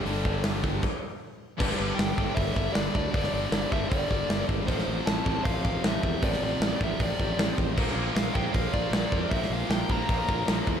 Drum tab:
CC |--------x-------|x---------------|----------------|----------------|
HH |o---o-----------|----o---o---o---|o---o---o---o---|o---o---o---o---|
SD |----o-----------|-o--o-------o---|-o--o-------o---|-o--o-------o---|
BD |--o---o-o-------|o-----o-o-o---o-|o-----o-o-o---o-|o-----o-o-o---o-|

CC |----------------|x---------------|----------------|
HH |o---o---o---o---|----o---o---o---|o---o---o---o---|
SD |-o--o-------o---|-o--o-------o---|-o--o-------o---|
BD |o-----o-o-o---o-|o-----o-o-o---o-|o-----o-o-o---o-|